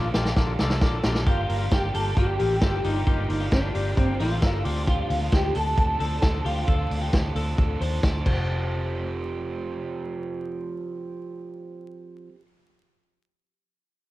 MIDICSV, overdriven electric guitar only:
0, 0, Header, 1, 2, 480
1, 0, Start_track
1, 0, Key_signature, -1, "major"
1, 0, Tempo, 450789
1, 1351, Time_signature, 4, 2, 24, 8
1, 15020, End_track
2, 0, Start_track
2, 0, Title_t, "Overdriven electric guitar"
2, 0, Program_c, 0, 29
2, 0, Note_on_c, 0, 53, 47
2, 0, Note_on_c, 0, 58, 54
2, 0, Note_on_c, 0, 62, 59
2, 0, Note_on_c, 0, 69, 61
2, 132, Note_off_c, 0, 53, 0
2, 142, Note_off_c, 0, 58, 0
2, 145, Note_on_c, 0, 53, 70
2, 150, Note_off_c, 0, 69, 0
2, 155, Note_off_c, 0, 62, 0
2, 155, Note_on_c, 0, 58, 69
2, 167, Note_on_c, 0, 62, 78
2, 173, Note_on_c, 0, 69, 75
2, 620, Note_off_c, 0, 53, 0
2, 624, Note_on_c, 0, 53, 78
2, 631, Note_off_c, 0, 58, 0
2, 635, Note_on_c, 0, 58, 70
2, 640, Note_off_c, 0, 62, 0
2, 643, Note_off_c, 0, 69, 0
2, 644, Note_on_c, 0, 62, 82
2, 654, Note_on_c, 0, 69, 77
2, 850, Note_off_c, 0, 53, 0
2, 862, Note_off_c, 0, 58, 0
2, 863, Note_on_c, 0, 53, 64
2, 874, Note_off_c, 0, 62, 0
2, 875, Note_on_c, 0, 58, 76
2, 883, Note_off_c, 0, 69, 0
2, 886, Note_on_c, 0, 62, 77
2, 894, Note_on_c, 0, 69, 81
2, 1339, Note_on_c, 0, 43, 78
2, 1345, Note_off_c, 0, 53, 0
2, 1345, Note_on_c, 0, 50, 76
2, 1349, Note_off_c, 0, 58, 0
2, 1349, Note_on_c, 0, 53, 78
2, 1353, Note_on_c, 0, 58, 81
2, 1354, Note_off_c, 0, 62, 0
2, 1358, Note_on_c, 0, 62, 89
2, 1359, Note_off_c, 0, 69, 0
2, 1363, Note_on_c, 0, 67, 78
2, 1687, Note_off_c, 0, 67, 0
2, 1699, Note_off_c, 0, 62, 0
2, 1699, Note_on_c, 0, 67, 53
2, 1705, Note_off_c, 0, 43, 0
2, 1708, Note_off_c, 0, 50, 0
2, 1709, Note_off_c, 0, 58, 0
2, 1710, Note_off_c, 0, 53, 0
2, 1712, Note_on_c, 0, 62, 55
2, 1722, Note_on_c, 0, 58, 51
2, 1729, Note_on_c, 0, 53, 48
2, 2045, Note_off_c, 0, 53, 0
2, 2057, Note_off_c, 0, 58, 0
2, 2058, Note_on_c, 0, 53, 55
2, 2065, Note_off_c, 0, 67, 0
2, 2067, Note_off_c, 0, 62, 0
2, 2070, Note_on_c, 0, 58, 65
2, 2080, Note_on_c, 0, 62, 67
2, 2088, Note_on_c, 0, 67, 74
2, 2536, Note_off_c, 0, 53, 0
2, 2541, Note_off_c, 0, 58, 0
2, 2541, Note_on_c, 0, 53, 70
2, 2554, Note_on_c, 0, 58, 66
2, 2558, Note_off_c, 0, 62, 0
2, 2559, Note_off_c, 0, 67, 0
2, 2562, Note_on_c, 0, 62, 65
2, 2571, Note_on_c, 0, 67, 72
2, 2768, Note_off_c, 0, 53, 0
2, 2781, Note_off_c, 0, 58, 0
2, 2781, Note_on_c, 0, 53, 65
2, 2789, Note_off_c, 0, 62, 0
2, 2794, Note_on_c, 0, 58, 59
2, 2797, Note_off_c, 0, 67, 0
2, 2802, Note_on_c, 0, 62, 69
2, 2810, Note_on_c, 0, 67, 73
2, 3265, Note_off_c, 0, 58, 0
2, 3267, Note_on_c, 0, 43, 89
2, 3270, Note_off_c, 0, 53, 0
2, 3272, Note_off_c, 0, 67, 0
2, 3275, Note_on_c, 0, 53, 77
2, 3277, Note_on_c, 0, 58, 84
2, 3285, Note_on_c, 0, 67, 84
2, 3615, Note_off_c, 0, 67, 0
2, 3627, Note_on_c, 0, 67, 51
2, 3629, Note_off_c, 0, 43, 0
2, 3633, Note_off_c, 0, 53, 0
2, 3634, Note_off_c, 0, 58, 0
2, 3636, Note_off_c, 0, 62, 0
2, 3640, Note_on_c, 0, 62, 50
2, 3649, Note_on_c, 0, 58, 49
2, 3657, Note_on_c, 0, 53, 48
2, 3970, Note_off_c, 0, 53, 0
2, 3983, Note_off_c, 0, 58, 0
2, 3983, Note_on_c, 0, 53, 58
2, 3989, Note_off_c, 0, 67, 0
2, 3990, Note_off_c, 0, 62, 0
2, 3996, Note_on_c, 0, 58, 61
2, 4003, Note_on_c, 0, 62, 64
2, 4011, Note_on_c, 0, 67, 66
2, 4464, Note_off_c, 0, 53, 0
2, 4465, Note_off_c, 0, 58, 0
2, 4468, Note_on_c, 0, 53, 64
2, 4478, Note_on_c, 0, 58, 67
2, 4481, Note_off_c, 0, 67, 0
2, 4483, Note_off_c, 0, 62, 0
2, 4488, Note_on_c, 0, 62, 68
2, 4496, Note_on_c, 0, 67, 75
2, 4694, Note_off_c, 0, 53, 0
2, 4704, Note_off_c, 0, 58, 0
2, 4707, Note_on_c, 0, 53, 54
2, 4715, Note_off_c, 0, 62, 0
2, 4716, Note_on_c, 0, 58, 61
2, 4723, Note_off_c, 0, 67, 0
2, 4728, Note_on_c, 0, 62, 66
2, 4738, Note_on_c, 0, 67, 62
2, 4939, Note_off_c, 0, 53, 0
2, 4947, Note_on_c, 0, 50, 70
2, 4948, Note_off_c, 0, 62, 0
2, 4952, Note_off_c, 0, 58, 0
2, 4952, Note_on_c, 0, 53, 70
2, 4957, Note_on_c, 0, 60, 79
2, 4961, Note_on_c, 0, 62, 75
2, 4963, Note_off_c, 0, 67, 0
2, 4967, Note_on_c, 0, 69, 78
2, 5535, Note_off_c, 0, 69, 0
2, 5539, Note_on_c, 0, 69, 56
2, 5543, Note_off_c, 0, 62, 0
2, 5549, Note_off_c, 0, 50, 0
2, 5556, Note_on_c, 0, 62, 50
2, 5564, Note_off_c, 0, 60, 0
2, 5569, Note_on_c, 0, 60, 52
2, 5900, Note_off_c, 0, 53, 0
2, 5902, Note_off_c, 0, 60, 0
2, 5904, Note_on_c, 0, 53, 57
2, 5905, Note_off_c, 0, 69, 0
2, 5913, Note_off_c, 0, 62, 0
2, 5915, Note_on_c, 0, 60, 57
2, 5925, Note_on_c, 0, 62, 64
2, 5934, Note_on_c, 0, 69, 71
2, 6379, Note_off_c, 0, 53, 0
2, 6383, Note_on_c, 0, 53, 65
2, 6391, Note_off_c, 0, 60, 0
2, 6391, Note_off_c, 0, 62, 0
2, 6395, Note_on_c, 0, 60, 66
2, 6404, Note_on_c, 0, 62, 62
2, 6410, Note_off_c, 0, 69, 0
2, 6414, Note_on_c, 0, 69, 68
2, 6615, Note_off_c, 0, 53, 0
2, 6625, Note_off_c, 0, 60, 0
2, 6628, Note_on_c, 0, 53, 72
2, 6633, Note_off_c, 0, 62, 0
2, 6638, Note_on_c, 0, 60, 66
2, 6642, Note_off_c, 0, 69, 0
2, 6646, Note_on_c, 0, 62, 67
2, 6657, Note_on_c, 0, 69, 78
2, 7106, Note_on_c, 0, 50, 72
2, 7111, Note_off_c, 0, 53, 0
2, 7111, Note_off_c, 0, 62, 0
2, 7115, Note_off_c, 0, 60, 0
2, 7115, Note_on_c, 0, 53, 82
2, 7119, Note_on_c, 0, 60, 83
2, 7123, Note_off_c, 0, 69, 0
2, 7124, Note_on_c, 0, 62, 86
2, 7127, Note_on_c, 0, 69, 85
2, 7449, Note_off_c, 0, 69, 0
2, 7462, Note_on_c, 0, 69, 66
2, 7467, Note_off_c, 0, 62, 0
2, 7468, Note_off_c, 0, 50, 0
2, 7473, Note_off_c, 0, 53, 0
2, 7475, Note_off_c, 0, 60, 0
2, 7480, Note_on_c, 0, 62, 63
2, 7495, Note_on_c, 0, 60, 56
2, 7826, Note_off_c, 0, 69, 0
2, 7828, Note_off_c, 0, 60, 0
2, 7831, Note_on_c, 0, 53, 64
2, 7835, Note_off_c, 0, 62, 0
2, 7841, Note_on_c, 0, 60, 66
2, 7852, Note_on_c, 0, 62, 72
2, 7860, Note_on_c, 0, 69, 72
2, 8304, Note_off_c, 0, 53, 0
2, 8308, Note_on_c, 0, 53, 65
2, 8319, Note_off_c, 0, 60, 0
2, 8319, Note_off_c, 0, 62, 0
2, 8323, Note_on_c, 0, 60, 68
2, 8331, Note_on_c, 0, 62, 69
2, 8334, Note_off_c, 0, 69, 0
2, 8338, Note_on_c, 0, 69, 73
2, 8534, Note_off_c, 0, 53, 0
2, 8546, Note_off_c, 0, 60, 0
2, 8547, Note_on_c, 0, 53, 67
2, 8554, Note_off_c, 0, 62, 0
2, 8559, Note_on_c, 0, 60, 68
2, 8564, Note_off_c, 0, 69, 0
2, 8566, Note_on_c, 0, 62, 68
2, 8577, Note_on_c, 0, 69, 74
2, 8736, Note_off_c, 0, 53, 0
2, 8740, Note_on_c, 0, 53, 70
2, 8799, Note_off_c, 0, 62, 0
2, 8806, Note_off_c, 0, 60, 0
2, 8810, Note_on_c, 0, 60, 71
2, 8868, Note_on_c, 0, 67, 73
2, 8900, Note_off_c, 0, 69, 0
2, 8922, Note_on_c, 0, 69, 80
2, 13085, Note_off_c, 0, 53, 0
2, 13155, Note_off_c, 0, 60, 0
2, 13213, Note_off_c, 0, 67, 0
2, 13267, Note_off_c, 0, 69, 0
2, 15020, End_track
0, 0, End_of_file